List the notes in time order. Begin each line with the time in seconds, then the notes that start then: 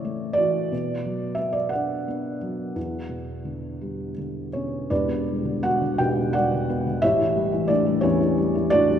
Already playing: A2 C#3 E3 E4 C#5 D5 E5
0.05 A3
0.33 D5
0.37 E3 F#4
0.72 B2
1.05 F#3
1.35 B3 E5
1.53 D5
1.69 D4 D5 F#5
2.08 B3
2.41 F#3
2.76 E2
3.09 B2
3.45 D3
3.81 G3
4.18 D3
4.53 B2 C#4 C#5
4.90 E1 E2 D4 G4 B4 D5
5.08 B2
5.28 G3
5.45 D3
5.63 B3 F#4 F#5
5.82 D3
5.98 B1 B2 G4 G5
6.18 B2
6.33 G3 F#4 D5 F#5
6.53 D3
6.69 B3
6.87 D3
7.02 A1 A2 E4 G4 C#5 E5
7.19 E3
7.36 G3
7.52 E3
7.68 A2 D4 D5
7.86 G3
8.01 E2 E3 C#4 G4 C#5
8.21 E3
8.38 G3
8.55 E3
8.70 A2 D4 F#4 G4 D5
8.89 G3